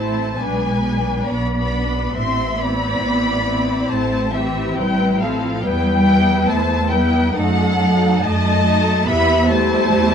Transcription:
Already playing: A1 A3 C4 E4 C5 A5
0.39 B1 G#3 B3 D4 B4 G#5
0.84 B3 D4
1.27 B1 B3 D5 B5
1.71 B3 D4
2.14 A1 C4 E5 C6
2.57 B3 C4 E4 D5 B5
3.01 A1
3.46 C4 E4
3.89 A1 A3 C5 A5
4.33 E3 C4 E4 G4 E5
4.76 A1 G3 B4 G5
5.20 F3 C4 E4 A4 F5
5.62 E2 G3 B3 E4 B4 G5
6.07 B3 E4
6.48 E2 A3 C5 A5
6.91 G3 B3 E4 B4 G5
7.34 F#2 F#3 A3 D#4 A4 F#5
7.79 A3 D#4
8.21 F#2 A3 D#5 A5
8.65 A3 D#4
9.06 E2 G3 B3 E4 E5 B5
9.49 G3 A3 E4 C5 A5
9.93 E2

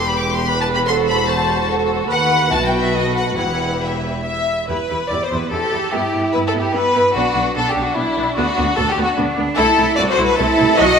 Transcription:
Already playing: E1 E2 G4 B4
0.05 G4 B5
0.18 D6
0.33 C6
0.47 B4 B5
0.61 A5
0.74 B5
0.87 F#4 A4 C5 C6
1.07 B5
1.27 C5 A5
1.68 A4
2.09 D#2 B4 F#5
2.50 B1 B2 E4 F#4 A5
2.65 G5
2.79 E5
2.92 A4 D#5
3.15 F#5
3.36 E1 E2 E4 G4 F#5
3.82 E5
4.24 E5
4.68 E2 E4 G4 B4
4.89 E2 E4 G4
5.10 E2 B3 E4 G4 D5
5.24 C5
5.32 E2 E4 G4
5.37 B4
5.51 E2 E4 G4 A4
5.72 E2 E4 G4
5.91 G2 B3 E4 G4
6.13 G2 B3 E4
6.32 G2 B3 E4 B4
6.46 A4
6.54 G2 B3 E4
6.60 G4
6.73 G2 B3 E4 B4
6.95 G2 B3 E4
7.14 B1 B3 D4 F#4
7.35 B1 B3 D4
7.55 B1 B3 D4 A4
7.69 G4
7.76 B1 B3 D4
7.82 F#4
7.96 B1 B3 D4 E4
8.17 B1 B3 D4
8.36 D2 B3 D4 F#4
8.57 D2 B3 D4
8.77 D2 B3 D4 F#4 A4
8.91 G4
8.97 D2 B3 D4
9.03 F#4
9.17 D2 B3 D4
9.36 D2 B3 D4
9.56 C2 A3 E4 A4
9.77 C2 A3 E4
9.96 C2 A3 E4 F#4 D5
10.11 C5
10.17 C2 A3 E4
10.24 B4
10.37 C2 A3 E4 A4
10.58 C2 A3 E4
10.78 B1 F#3 F#4 D#5

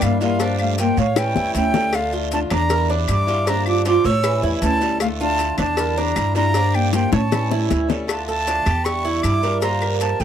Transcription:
Already playing: D4
0.01 G2 D3 G3 A#3 D4 E4 F5, cowbell, short guiro, claves, maracas
0.21 G3 A#3 D4 E4 F4 F5, short guiro, maracas
0.39 D3 F3 A#3 D4 G4, cowbell, long guiro, maracas
0.59 A3 F5, claves, maracas
0.78 F3 A#3 D4 F4 G4 G5, cowbell, short guiro, maracas
0.97 A2 A3 C#5 F5, muted steel-string acoustic guitar stroke, short guiro, maracas
1.16 E3 G3 C#4 E4 G5, cowbell, high bongo, long guiro, claves, maracas
1.36 E2 E4, low bongo, maracas
1.55 D2 E3 G3 C#4 E4 G5, cowbell, short guiro, maracas
1.74 G3 C#4 E4 A4, low bongo, short guiro, maracas
1.93 D3 A3 D4 F4 F5, cowbell, long guiro, claves, maracas
2.12 F4, maracas
2.32 D3 A3 D4 F4 A5, cowbell, short guiro, maracas
2.50 E2 D4 A#5, muted steel-string acoustic guitar stroke, cowbell, short guiro, claves, maracas
2.70 D3 G3 D4 E4 A#4, cowbell, long guiro, maracas
2.89 D4, maracas
3.08 G2 D3 G3 D4 E4 G4 D6, cowbell, short guiro, claves, maracas
3.27 G3 D4 E4 F4, short guiro, maracas
3.47 D3 F3 A#3 D4 G4 A#5, cowbell, long guiro, maracas
3.66 F4 D6, claves, maracas
3.85 F3 A#3 D4 F4 G4 D6, cowbell, short guiro, maracas
4.04 A2 G4 C#5 E6, muted steel-string acoustic guitar stroke, short guiro, maracas
4.23 E3 G3 C#4 E4, cowbell, long guiro, claves, maracas
4.43 E2 E4, maracas
4.62 D2 E3 G3 C#4 E4 A5, cowbell, short guiro, maracas
4.81 G3 C#4 E4 A4, short guiro, maracas
5.00 D3 A3 D4 F4 F5, cowbell, long guiro, claves, maracas
5.20 D4 F4 A5, maracas
5.39 D3 A3 D4 F4, cowbell, short guiro, maracas
5.58 E2 D4 A5, muted steel-string acoustic guitar stroke, cowbell, short guiro, claves, maracas
5.76 D3 G3 D4 E4 A#4, cowbell, long guiro, maracas
5.97 D4 A#5, maracas
6.15 G2 D3 G3 D4 E4, cowbell, short guiro, claves, maracas
6.35 G3 D4 E4 F4 A#5, short guiro, maracas
6.54 D3 F3 A#3 D4 G4, cowbell, long guiro, maracas
6.74 A#3 G5, claves, maracas
6.92 F3 A#3 D4 F4 G4 G5, cowbell, high bongo, short guiro, maracas
7.12 A2 C#4 C#5 A5, muted steel-string acoustic guitar stroke, high bongo, short guiro, maracas
7.32 E3 G3 C#4 E4, cowbell, low bongo, long guiro, claves, maracas
7.51 E4, low bongo, maracas
7.70 D2 E3 G3 C#4 E4, cowbell, low bongo, short guiro, maracas
7.88 G3 C#4 E4 A4, low bongo, short guiro, maracas
8.07 D3 A3 D4 F4 A5, cowbell, long guiro, claves, maracas
8.28 A4 A5, maracas
8.47 D3 A3 D4 F4, cowbell, short guiro, maracas
8.66 E2 G4, muted steel-string acoustic guitar stroke, cowbell, short guiro, claves, maracas
8.85 D3 G3 D4 E4 C#6, cowbell, long guiro, maracas
9.05 E4, maracas
9.22 G2 D3 G3 D4 E4 D6, cowbell, short guiro, claves, maracas
9.43 G3 D4 E4 A#4, short guiro, maracas
9.61 D3 F3 A#3 D4 F4 G4 A#5, cowbell, long guiro, maracas
9.81 A#4, claves, maracas
10.00 F3 A#3 D4 G4 A5, cowbell, short guiro, maracas
10.20 A2 A4 G5, muted steel-string acoustic guitar stroke, short guiro, maracas

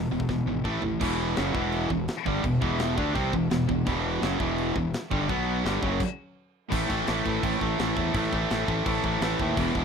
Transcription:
0.12 E1 E2 B2
0.20 kick
0.29 E1 E2 B2, kick, snare
0.46 G#1 E2 B2
0.64 A1 A2 E3 A3, kick
0.82 A1 A2 E3, floor tom
1.01 E1 E2 B2 E3 B3 G4 E5, kick, crash
1.36 F#1 F#2 C#3 F#3, snare, crash
1.54 E1 E2 B2 E3, kick
1.72 crash
1.90 E1 E2 B2, kick
2.08 snare, crash
2.26 G1 G2 D3 G3, kick
2.44 E1 E2 B2, kick, crash
2.62 E1 E2 B2 E3, kick
2.79 snare, crash
2.97 D2 D3 A3 D4, kick
3.14 C2 C3 G3 C4, kick, crash
3.33 E1 E2 B2, kick
3.51 E1 E2 B2, snare, crash
3.68 E1 E2 B2, kick
3.87 E1 E2 B2 E3, kick, crash
4.22 F#1 F#2 C#3 F#3, snare, crash
4.40 E1 E2 B2 E3, kick
4.58 crash
4.76 E1 E2 B2, kick
4.94 snare, crash
5.11 G1 G2 D3 G3, kick
5.29 B1 B2 F#3 B3 B4 F#5, kick, crash
5.64 G1 G2 D3 G3 E4 G5, snare, crash
5.82 F#1 F#2 C#3 F#3 C#4 C#5 F#5, kick
6.00 kick, crash
6.70 A1 A2 E3 A3 E4 C5 E5, kick, crash
6.88 A1 A2 E3 A3, kick, crash
7.07 A1 A2 E3 A3, snare, crash
7.25 A1 A2 E3 A3, kick, crash
7.43 A1 A2 E3 A3, kick, crash
7.61 A1 A2 E3 A3, kick, crash
7.79 A1 A2 E3 A3, snare, crash
7.96 E2 A2 E3 A3, kick, crash
8.14 A1 A2 E3 A3, kick, crash
8.33 A1 A2 E3 A3, kick, crash
8.50 A1 A2 E3 A3, snare, crash
8.68 A1 A2 E3 A3, kick, crash
8.86 A1 A2 E3 A3, kick, crash
9.03 A1 A2 E3 A3, kick, crash
9.21 A1 A2 E3 A3, snare, crash
9.39 D#2 A2 E3 A3, kick, crash
9.57 E1 E2 B2 E3 G3 B4, kick, crash
9.75 E1 E2 B2 E3, kick, crash

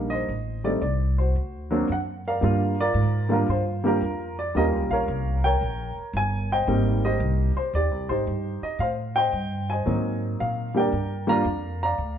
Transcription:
Already playing: A#1 G3 A#3 D4 D#4
0.10 C5 D#5
0.29 A1
0.64 G3 A3 C4 D#4 D5
0.82 C2 D5
1.18 F#4 C5
1.36 D2
1.71 F#3 A#3 C4 D4
1.89 F#2 F#5
2.28 A#4 D5 F5
2.41 G2 G3 A#3 D4 F4
2.80 F4 A#4 D5
2.94 G#2
3.29 G3 A#3 D4 F4
3.33 A#4
3.49 G2 F4 C5
3.84 G3 A#3 D4 G4 A#4
3.88 F4
4.01 F2
4.39 D5
4.55 D#2 G3 A#3 C#4 F4 G4 A#4 D#5
4.73 C#2
4.89 A#1 A#4 C#5 F5
5.08 C2
5.44 A#4 C#5 G5
5.61 A#1
5.97 muted upright bass stroke
6.13 G1 G#5
6.52 C5 D#5 G5
6.67 G#1 G3 A#3 C4 D#4
7.05 G4 C5 D#5
7.20 C2
7.56 C5, muted upright bass stroke
7.73 D#2 G4 D5
7.91 C2
8.09 G#1 D#4 G4 C5
8.27 G2
8.62 D#5, muted upright bass stroke
8.79 A2 C5 F5
9.16 C5 D#5 G5
9.32 G2
9.70 C5 D#5 G#5
9.86 G#2 F#3 A#3 C4 D#4
10.40 A#2 F5
10.74 G3 A#3 D4 G4 G5
10.79 A#4 D5
10.92 G2
11.27 G3 A#3 D4 F4 A#5
11.31 D5 F5
11.44 F2
11.83 D5 F5 A#5
11.98 D2

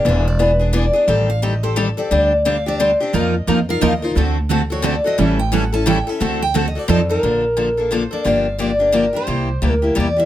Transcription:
0.05 E1 E3 B3 D4 G#4 E5
0.28 D5
0.39 E3 B3 D4 G#4 B4
0.59 B3 D4 G#4
0.73 E3 B3 D4 G#4 D5
0.93 B3 D4 G#4
1.07 A1 D#3 G3 C4 G4 A4
1.30 F5
1.42 D#3 G3 C4 G4 A4 D#5
1.63 C4 G4 A4 C5
1.76 D#3 G3 C4 G4 A4
1.97 C4 G4 A4 D5
2.11 D2 D3 G3 C4 D4 G4
2.45 D3 G3 C4 D4 G4 F5
2.66 C4 D4 G4 D5
2.80 D3 G3 C4 D4 G4 C5
3.00 C4 D4 G4
3.13 F2 F3 A#3 D#4 F4 A#4 D#5
3.47 F2 F3 A#3 D#4 F4 A#4
3.69 D#4 F4 A#4 F5
3.81 D#2 F3 A#3 D#4 F4 A#4 D#5
4.02 D#4 F4 A#4 C5
4.16 D2 D3 A3 C4 F#4 A4
4.50 D3 A3 C4 F#4 A4
4.70 C4 F#4 A4 C#5
4.82 D3 A3 C4 F#4 A4 D5
5.04 C4 F#4 A4 D#5
5.18 A1 E3 G3 C#4 E4 A4 E5
5.39 G5
5.52 E3 G3 C#4 E4 A4 F#5
5.73 C#4 E4 A4 A5
5.86 E3 G3 C#4 E4 A4 G5
6.07 C#4 E4 A4 E5
6.20 D2 D3 A3 C4 F#4 A4 F#5
6.42 G5
6.54 D3 A3 C4 F#4 A4 F#5
6.68 D#5
6.75 C4 F#4 A4 D5
6.88 F2 F3 C4 D#4 A4 D#5
7.09 C4 D#4 A4 A#4
7.23 A#1 D3 F3 A#3 D4 A4
7.57 D3 F3 A#3 D4 A4
7.77 A#3 D4 A4
7.91 D3 F3 A#3 D4 A4 C5
8.11 A#3 D4 A4 D5
8.24 G1 D3 F3 A#3 D4 G4 F5
8.58 D3 F3 A#3 D4 G4 D5
8.79 A#3 D4 G4
8.92 D3 F3 A#3 D4 G4 A#4
9.13 A#3 D4 G4 C5
9.27 C2 C3 G3 A#3 E4 G4
9.62 D2 C3 G3 A#3 E4 G4
9.71 A#4
9.82 A#3 E4 G4
9.95 E2 C3 G3 A#3 E4 G4
10.00 D5
10.16 A#3 E4 G4 E5

